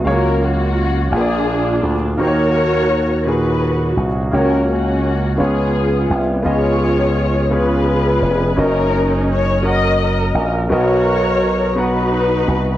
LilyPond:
<<
  \new Staff \with { instrumentName = "Grand piano" } { \time 6/8 \key fis \major \tempo 4. = 56 <fis gis ais cis'' eis''>4 r8 <ais eis' gis' b' d''>4 r8 | <ais dis' fis' bis' cis''>4 r8 <ais, dis' fis' gis'>4 r8 | <ais cis' fis' cis''>4 r8 <b eis' gis' cis''>4 r8 | <b eis' gis' dis''>4 r8 <b eis' gis' cis''>4 r8 |
<cis' fis' ais' dis''>4 r8 <cis' fis' ais' fis''>4 r8 | <b fis' ais' dis''>4 r8 <b fis' fis'' ais''>4 r8 | }
  \new Staff \with { instrumentName = "Grand piano" } { \clef bass \time 6/8 \key fis \major cis4. ais,4. | dis4. r4. | cis4. cis'4. | r4. cis4. |
r2. | b,4. r4. | }
  \new Staff \with { instrumentName = "String section" } { \time 6/8 \key fis \major << { ais'8 fis'4 gis'4 r8 | cis''4. b'4 r8 | ais'8 fis'4 gis'4 r8 | cis''4. b'4. |
ais'4 cis''8 dis''4 r8 | cis''4. b'4. | } \\ { <eis' fis'>8 ais4 <d' eis'>4. | <fis' ais'>4. fis'4. | <cis' fis'>8 <ais cis'>4 <b eis'>4. | <eis' gis'>4. <eis' gis'>4. |
<cis' dis'>4. ais'4. | <fis' ais'>4. <dis' fis'>4. | } >> }
  \new Staff \with { instrumentName = "Slap bass" } { \clef bass \time 6/8 \key fis \major cis,4. ais,,4 d,8 | dis,2~ dis,8 bis,,8 | cis,4. cis,4 bis,,8 | cis,2~ cis,8 eis,,8 |
fis,,2~ fis,,8 ais,,8 | b,,2~ b,,8 bis,,8 | }
>>